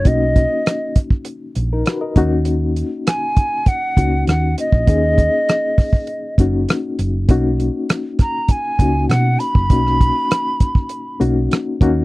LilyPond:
<<
  \new Staff \with { instrumentName = "Flute" } { \time 4/4 \key b \major \tempo 4 = 100 dis''4. r2 r8 | r4 gis''4 fis''4 fis''8 dis''8~ | dis''2~ dis''8 r4. | r4. ais''8 gis''4 fis''8 b''8~ |
b''2~ b''8 r4. | }
  \new Staff \with { instrumentName = "Reed electric piano" } { \time 4/4 \key b \major << { r2 r8. <dis' ais'>16 <fis' b'>16 <ais' dis''>8 r16 | r1 | r1 | r1 |
r1 | } \\ { <ais cis' dis' fis'>4. r2 <ais cis' dis' fis'>8~ | <ais cis' dis' fis'>4 r4. <ais cis' dis' fis'>4 r8 | <ais cis' dis' gis'>4. r4 <ais cis' dis' fis'>4 r8 | <ais cis' dis' fis'>4. r4 <ais cis' dis' fis'>4 r8 |
<ais cis' dis' fis'>4. r4 <ais cis' dis' fis'>4 <ais cis' dis' fis'>8 | } >> }
  \new Staff \with { instrumentName = "Fingered electric bass" } { \clef bass \time 4/4 \key b \major b,,8. r4. r16 ais,,8 r8 dis,8~ | dis,8. r4. r16 cis,8 dis,8 r16 ais,,16 | dis,8. r4. r16 fis,,8 r8 fis,,8 | b,,8. r4. r16 cis,8 b,8 r16 fis,,16 |
b,,8. r4. r16 b,,8 r8 dis,8 | }
  \new DrumStaff \with { instrumentName = "Drums" } \drummode { \time 4/4 <hh bd>8 <hh bd>8 <hh ss>8 <hh bd>16 bd16 hh8 hh8 <hh ss>8 <hh bd>8 | hh8 hh8 <hh ss>8 <hh bd>8 <hh bd>8 <hh bd>8 <hh ss>8 hh16 bd16 | <hh bd>8 <hh bd>8 <hh ss>8 <hho bd ss>16 bd16 hh8 <hh bd>8 <hh ss>8 hh8 | <hh bd>8 hh8 <hh ss>8 <hh bd ss>8 <hh bd>8 <hh bd>8 <hh ss>8 hh16 bd16 |
<hh bd>16 ss16 <hh bd>8 <hh ss>8 <hh bd>16 bd16 hh8 hh8 <hh ss>8 <hh bd>8 | }
>>